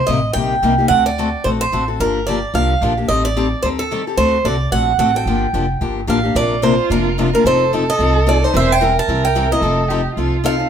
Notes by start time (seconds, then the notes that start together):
0.07 A1 C3 G3 A#3 D#4 G4 D#5
0.33 A#1 C3 G3 A#3 D#4 G4 G5
0.62 C2 C3 G3 A#3 D#4 G4
0.78 A#3 D#4 G4
0.88 D2 D3 A3 C4 F#4 A4 F#5
1.06 D5
1.18 D3 A3 C4 F#4 A4
1.44 A#1 D3 A3 C4 F#4 A4 C5
1.61 C5
1.72 A1 D3 A3 C4 F#4 A4
1.88 C4 F#4 A4
2.00 G1 D3 F3 A#3 D4 G4 A#4
2.27 D3 F3 A#3 D4 G4 D5
2.54 C2 D3 F3 A#3 D4 G4 F5
2.81 A#1 D3 F3 A#3 D4 G4
2.97 A#3 D4 G4
3.08 A1 D#3 G3 C4 G4 A4 D#5
3.25 D5
3.36 D#3 G3 C4 G4 A4
3.62 D#2 D#3 G3 C4 G4 A4 C5
3.79 A4
3.91 D#3 G3 C4 G4 A4
4.07 C4 G4 A4
4.17 D2 D3 A3 C4 F#4 A4 C5
4.45 C2 D3 A3 C4 F#4 A4 D5
4.72 A#1 D3 A3 C4 F#4 A4 F#5
4.99 A1 D3 A3 C4 F#4 A4 F#5
5.15 C4 F#4 A4 G5
5.26 G1 D3 F3 A#3 D4 G4
5.53 F1 D3 F3 A#3 D4 G4
5.81 G1 D3 F3 A#3 D4 G4
6.07 A1 D3 F3 A#3 D4 G4 F5
6.23 A#3 D4 G4
6.35 A#1 C3 F3 A#3 D4 F4 A#4 D5
6.62 C3 F3 A#3 D4 A#4 C5
6.90 F1 C3 F3 A#3 D4 A#4
7.18 C3 F3 A#3 D4 A#4
7.33 A#3 D4 A#4
7.43 F1 F3 C4 D#4 A4 C5
7.73 F3 C4 D#4 A4
7.90 D#5
7.99 C2 F3 C4 D#4 A4
8.26 F3 C4 D#4 A4 D5
8.42 C4 D#4 A4 C5
8.53 E1 E3 G3 C4 E4 A#4 C5 E5
8.72 G5
8.81 E3 G3 C4 E4 A#4
8.99 A5
9.08 C2 E3 G3 C4 E4 A#4
9.25 G5
9.35 E3 G3 C4 E4 A#4
9.51 C4 E4 A#4 D#5
9.61 F1 F3 C4 D#4 A4
9.88 F3 C4 D#4 G4 A4
10.15 C2 F3 C4 D#4 F4 A4
10.44 F3 C4 D#4 A4 F5
10.58 C4 D#4 A4